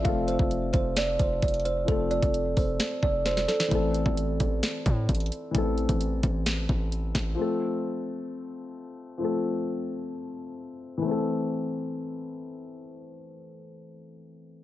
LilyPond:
<<
  \new Staff \with { instrumentName = "Kalimba" } { \time 4/4 \key a \minor \tempo 4 = 131 f''8 c''4 c''8 d''8 c''8 d''8 c''8 | a'8 d''4 c''8 r8 d''8 c''8 a'8 | r1 | r1 |
r1 | r1 | r1 | r1 | }
  \new Staff \with { instrumentName = "Grand piano" } { \time 4/4 \key a \minor <f a c' a'>1 | <f a c' a'>1 | <e a c' a'>1 | <e a c' a'>1 |
<f a c' a'>1 | <f a c' a'>1 | <e a c' a'>1~ | <e a c' a'>1 | }
  \new Staff \with { instrumentName = "808-style bass" } { \clef bass \time 4/4 \key a \minor f,,8. f,,8. f,,4 f,,8 f,,4 | f,,8. f,,8. f,,8 r8 f,,4 r8 | a,,8. a,,8. a,,8 r8 a,8 a,,8 r8 | a,,8. a,,8. a,,4 a,,4 a,,8 |
r1 | r1 | r1 | r1 | }
  \new DrumStaff \with { instrumentName = "Drums" } \drummode { \time 4/4 <hh bd>8 hh16 bd16 hh8 <hh bd>8 <hh sn>8 <hh bd>8 <hh bd>32 hh32 hh32 hh32 hh8 | <hh bd>8 hh16 <hh bd>16 hh8 <hho bd>8 <hh sn>8 bd8 <hh sn>16 sn16 <hh sn>16 sn16 | <hh bd>8 hh16 bd16 hh8 <hh bd>8 <hh sn>8 <hh bd>8 <hh bd>32 hh32 hh32 hh32 hh8 | <hh bd>8 hh16 <hh bd>16 hh8 <hh bd>8 <hh sn>8 bd8 hh8 <hh bd sn>8 |
r4 r4 r4 r4 | r4 r4 r4 r4 | r4 r4 r4 r4 | r4 r4 r4 r4 | }
>>